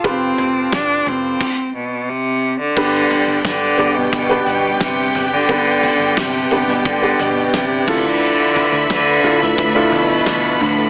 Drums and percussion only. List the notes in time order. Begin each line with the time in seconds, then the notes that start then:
0.04 kick, closed hi-hat
0.38 closed hi-hat, floor tom
0.72 kick, snare, closed hi-hat
1.06 closed hi-hat, floor tom
1.41 kick, crash
2.77 kick, crash
3.11 floor tom, hi-hat pedal, open hi-hat
3.45 kick, snare, hi-hat pedal, open hi-hat
3.79 floor tom, hi-hat pedal, open hi-hat
4.13 kick, hi-hat pedal, open hi-hat
4.46 floor tom, hi-hat pedal, open hi-hat
4.80 kick, snare, hi-hat pedal, open hi-hat
5.15 floor tom, hi-hat pedal, open hi-hat
5.49 kick, hi-hat pedal, open hi-hat
5.83 floor tom, hi-hat pedal, open hi-hat
6.17 kick, snare, hi-hat pedal, open hi-hat
6.51 floor tom, hi-hat pedal, open hi-hat
6.68 snare
6.85 kick, hi-hat pedal, open hi-hat
7.19 floor tom, hi-hat pedal, open hi-hat
7.54 kick, snare, hi-hat pedal, open hi-hat
7.88 kick, floor tom, crash
8.22 hi-hat pedal, open hi-hat
8.56 floor tom, hi-hat pedal, open hi-hat
8.90 kick, snare, hi-hat pedal, open hi-hat
9.24 floor tom, hi-hat pedal, open hi-hat
9.42 snare
9.58 kick, hi-hat pedal, open hi-hat
9.92 floor tom, hi-hat pedal, open hi-hat
10.26 kick, snare, hi-hat pedal, open hi-hat
10.60 floor tom, hi-hat pedal, open hi-hat